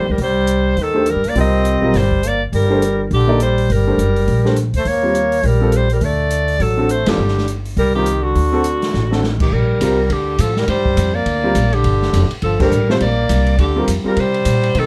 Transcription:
Already playing: G3 C5
0.09 C#2 G3 A#4
0.18 C2 G3, kick, open hi-hat
0.23 C5
0.47 closed hi-hat
0.77 D#2 D#3, kick, open hi-hat
0.83 A4
0.94 A3 D4 G4 C5
1.06 closed hi-hat
1.10 G3 A#4
1.16 G2
1.24 C#2 A#3, open hi-hat
1.29 D5
1.35 C2 G3 C4 F4 A#4, kick, open hi-hat
1.40 D#5
1.65 closed hi-hat
1.82 B1 G3 C4 F4 A#4
1.94 G1 G3 C5, kick, snare, open hi-hat
2.12 kick
2.23 A#3, closed hi-hat
2.28 D5
2.53 G1 G3 A#4, kick, open hi-hat
2.70 A3 D4 G4 C5
2.82 closed hi-hat
3.11 A#1 D3 G4, kick, open hi-hat
3.27 A#3 D#4 A4 D5
3.40 G3 C5, closed hi-hat
3.58 open hi-hat
3.69 G1 G3 A#4, kick, open hi-hat
3.87 A3 D4 G4 C5
3.98 F#1, closed hi-hat
4.16 open hi-hat
4.27 A#1, kick, open hi-hat
4.45 A3 D4 G4 C5, snare
4.56 closed hi-hat
4.73 D2 A3 C5, open hi-hat
4.85 D#2 A#3 C#5, kick, open hi-hat
5.03 G3 C4 F4 A#4
5.15 closed hi-hat
5.32 open hi-hat
5.43 A#1 G3 A#4, kick, open hi-hat
5.60 G3 C4 F4 A4
5.72 G3, closed hi-hat
5.77 C5
5.89 G3 A#4, open hi-hat
6.01 D2 A3, kick, open hi-hat
6.05 D5
6.30 closed hi-hat
6.48 open hi-hat
6.60 A1 F#3 A4, kick, open hi-hat
6.77 C4 D4 F#4 A4
6.89 A3 C5, closed hi-hat
7.06 F#1 D3 G3 C4 F4 G4 A4, snare, ride
7.18 G1
7.28 snare
7.38 snare
7.48 closed hi-hat
7.65 open hi-hat
7.77 C2 G3 A#4, kick, open hi-hat
7.95 D#3 G3 C4 F4 G4 A#4
8.06 closed hi-hat
8.22 D3 F#4
8.35 D2, kick, open hi-hat
8.52 C4 D4 F#4 A4
8.64 closed hi-hat
8.82 snare, open hi-hat
8.94 A1, snare
9.11 C4 D4 F#4 A4, snare
9.23 snare
9.40 D#3 G4, kick, crash
9.52 A#1 G3 A#4, kick
9.81 C2 G3 C4 F4 A#4, kick, hi-hat pedal, ride
10.10 D2 D3 G4, kick, ride
10.38 A2 F3 A4, kick, hi-hat pedal, ride
10.56 G3 A#4, snare
10.68 G2 G3 C5, kick, ride
10.86 kick
10.97 F2, hi-hat pedal, ride
11.14 A#3 D5
11.26 D2, kick, ride
11.44 G3 C4 F4 A#4
11.55 A#1, kick, hi-hat pedal, ride
11.73 D3 G4, ride
11.84 G1, kick, ride
12.02 snare
12.13 F1, kick, hi-hat pedal, ride
12.31 muted upright bass stroke, ride
12.42 G1 F3 A4, kick, ride
12.59 G3 A3 D4 G4 A#4 C5, kick, crash
12.71 A1, hi-hat pedal
12.89 G3 A3 C4 F4 C5, snare
13.00 A#1 A#3 D5, kick, ride
13.29 C2, kick, hi-hat pedal, ride
13.46 ride
13.58 D2 D3 G4, kick, ride
13.76 G3 C4 F4 A#4
13.88 F2, kick, hi-hat pedal, ride
14.04 G3 C4 F4 A#4, muted upright bass stroke
14.16 C3 G3 C5, kick, ride
14.34 ride
14.45 A#2, kick, hi-hat pedal, ride
14.63 ride
14.75 C3 D#3, kick, ride
14.79 A4

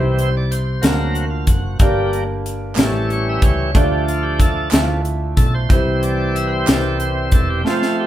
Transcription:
Already playing: C2 C3 E3 G3 C4 E4 C5
0.19 C5, closed hi-hat
0.37 D5
0.51 C5, closed hi-hat
0.81 D2 D3 F#3 A#3 C4 D4 F#4 A#4 C5, snare, closed hi-hat
1.14 F#4, closed hi-hat
1.30 F4
1.47 F#1 F#4, kick, closed hi-hat
1.79 G1 G2 G3 A#3 D4 G4 D5, kick, closed hi-hat
2.13 closed hi-hat
2.46 closed hi-hat
2.75 A1 A2 E3 G3 A3 C#4 E4 G4 A#4, snare, clap, closed hi-hat
2.81 A4 C#5
3.10 C#5, closed hi-hat
3.29 E5
3.42 C#2 C#5, kick, closed hi-hat
3.74 D2 D3 F3 A3 D4 F4 G4 D5, kick, closed hi-hat
4.08 F4, closed hi-hat
4.23 G4
4.40 A4, kick, closed hi-hat
4.71 D2 F3 A3 D4 E4 E5, snare, clap, closed hi-hat
4.80 F4
5.05 closed hi-hat
5.37 B1 A4, kick, closed hi-hat
5.54 C5
5.69 C2 C3 E3 G3 C4 E4 C5, kick, closed hi-hat
6.03 D5, closed hi-hat
6.36 E5, closed hi-hat
6.47 B4
6.52 C5
6.67 C2 G3 C4 E4 A#4 D5, snare, clap, closed hi-hat
6.77 C5
7.00 C5, closed hi-hat
7.32 E1 A4, kick, closed hi-hat
7.50 G4
7.65 F3 A3 C4 F4 C5, snare
7.82 snare
8.00 G4

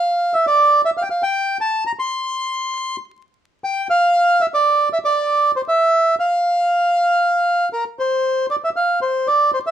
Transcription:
Already playing: F5
0.34 E5
0.47 D5
0.85 E5
0.97 F5
1.02 G5
1.10 F5
1.23 G5
1.61 A5
1.87 A#5
1.99 C6
3.64 G5
3.90 F5
4.41 E5
4.54 D5
4.93 E5
5.05 D5
5.56 C5
5.68 E5
6.20 F5
7.73 A#4
7.99 C5
8.50 D5
8.64 E5
8.76 F5
9.02 C5
9.28 D5
9.54 C5
9.67 E5

